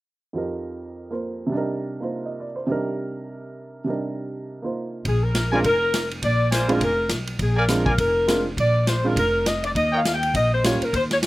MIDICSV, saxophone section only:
0, 0, Header, 1, 2, 480
1, 0, Start_track
1, 0, Tempo, 293974
1, 568, Time_signature, 4, 2, 24, 8
1, 18393, End_track
2, 0, Start_track
2, 0, Title_t, "Saxophone section"
2, 0, Program_c, 0, 65
2, 8292, Note_on_c, 0, 68, 80
2, 8538, Note_off_c, 0, 68, 0
2, 8538, Note_on_c, 0, 70, 80
2, 9209, Note_off_c, 0, 70, 0
2, 9236, Note_on_c, 0, 70, 100
2, 9934, Note_off_c, 0, 70, 0
2, 10196, Note_on_c, 0, 74, 106
2, 10627, Note_off_c, 0, 74, 0
2, 10650, Note_on_c, 0, 72, 89
2, 10933, Note_off_c, 0, 72, 0
2, 10969, Note_on_c, 0, 70, 79
2, 11134, Note_off_c, 0, 70, 0
2, 11153, Note_on_c, 0, 70, 91
2, 11586, Note_off_c, 0, 70, 0
2, 12106, Note_on_c, 0, 68, 75
2, 12362, Note_off_c, 0, 68, 0
2, 12382, Note_on_c, 0, 70, 78
2, 13043, Note_off_c, 0, 70, 0
2, 13062, Note_on_c, 0, 70, 92
2, 13766, Note_off_c, 0, 70, 0
2, 14038, Note_on_c, 0, 74, 100
2, 14468, Note_off_c, 0, 74, 0
2, 14495, Note_on_c, 0, 72, 86
2, 14776, Note_off_c, 0, 72, 0
2, 14814, Note_on_c, 0, 70, 77
2, 14966, Note_off_c, 0, 70, 0
2, 14985, Note_on_c, 0, 70, 94
2, 15422, Note_off_c, 0, 70, 0
2, 15465, Note_on_c, 0, 75, 85
2, 15741, Note_off_c, 0, 75, 0
2, 15758, Note_on_c, 0, 74, 83
2, 15839, Note_off_c, 0, 74, 0
2, 15946, Note_on_c, 0, 75, 98
2, 16234, Note_off_c, 0, 75, 0
2, 16284, Note_on_c, 0, 77, 84
2, 16563, Note_on_c, 0, 79, 92
2, 16564, Note_off_c, 0, 77, 0
2, 16862, Note_off_c, 0, 79, 0
2, 16907, Note_on_c, 0, 75, 99
2, 17164, Note_off_c, 0, 75, 0
2, 17199, Note_on_c, 0, 72, 84
2, 17367, Note_off_c, 0, 72, 0
2, 17395, Note_on_c, 0, 73, 81
2, 17668, Note_off_c, 0, 73, 0
2, 17693, Note_on_c, 0, 70, 82
2, 17868, Note_off_c, 0, 70, 0
2, 17889, Note_on_c, 0, 72, 94
2, 18009, Note_off_c, 0, 72, 0
2, 18172, Note_on_c, 0, 73, 83
2, 18251, Note_off_c, 0, 73, 0
2, 18393, End_track
0, 0, End_of_file